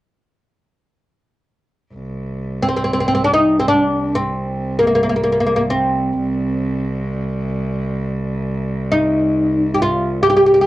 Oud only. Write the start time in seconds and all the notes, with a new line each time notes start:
2.63 C4
2.69 C4
2.77 C4
2.84 C4
2.93 C4
3.00 C4
3.08 C4
3.15 C4
3.24 D4
3.34 D#4
3.59 C4
3.68 D4
4.15 C4
4.79 A#3
4.87 A#3
4.95 A#3
5.03 A#3
5.09 A#3
5.16 A#3
5.24 A#3
5.32 A#3
5.40 A#3
5.47 A#3
5.56 A#3
5.70 C4
8.92 D#4
9.74 G4
9.82 F4
10.23 G4
10.30 G4
10.37 G4
10.46 G4
10.54 G4
10.61 G4